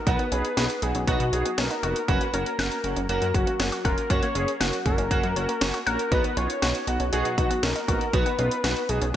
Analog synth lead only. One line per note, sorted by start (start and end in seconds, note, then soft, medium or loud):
0.07 0.84 B4 loud
0.82 1.07 G#4 medium
1.08 1.60 F#4 medium
1.58 2.10 A#4 loud
2.08 2.33 B4 loud
2.34 2.57 A#4 medium
2.59 3.06 A#4 loud
3.09 3.36 A#4 loud
3.34 3.84 F#4 loud
3.85 4.12 A#4 medium
4.10 4.62 C#5 loud
4.61 4.85 F#4 medium
4.86 5.83 A#4 loud
5.87 6.13 A#4 loud
6.12 6.39 B4 loud
6.37 6.89 C#5 loud
6.88 7.12 F#4 medium
7.13 7.36 F#4 loud
7.38 7.65 F#4 medium
7.63 8.15 A#4 loud
8.13 8.91 B4 loud
8.89 9.14 G#4 loud